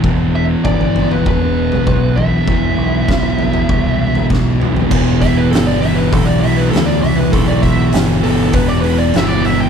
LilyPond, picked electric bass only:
\new Staff \with { instrumentName = "Picked electric bass" } { \clef bass \time 4/4 \key e \minor \tempo 4 = 99 e,,4 g,,4 e,,4 b,,4 | e,,8 b,,8 b,,4 c,4 b,,4 | e,,4 g,,4 b,,4 d,8 c,8 | b,,4 g,,8 g,,8 e,,4 g,,4 | }